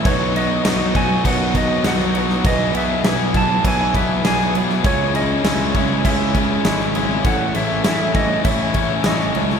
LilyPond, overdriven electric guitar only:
\new Staff \with { instrumentName = "Overdriven electric guitar" } { \time 4/4 \key a \lydian \tempo 4 = 100 <b, fis b dis' fis'>8 <b, fis b dis' fis'>8 <b, fis b dis' fis'>8 <b, fis b dis' fis'>8 <b, fis b dis' fis'>8 <b, fis b dis' fis'>8 <b, fis b dis' fis'>8 <b, fis b dis' fis'>8 | <b, e b e' gis'>8 <b, e b e' gis'>8 <b, e b e' gis'>8 <b, e b e' gis'>8 <b, e b e' gis'>8 <b, e b e' gis'>8 <b, e b e' gis'>8 <b, e b e' gis'>8 | <cis gis cis' e'>8 <cis gis cis' e'>8 <cis gis cis' e'>8 <cis gis cis' e'>8 <cis gis cis' e'>8 <cis gis cis' e'>8 <cis gis cis' e'>8 <cis gis cis' e'>8 | <a, e a cis' e'>8 <a, e a cis' e'>8 <a, e a cis' e'>8 <a, e a cis' e'>8 <a, e a cis' e'>8 <a, e a cis' e'>8 <a, e a cis' e'>8 <a, e a cis' e'>8 | }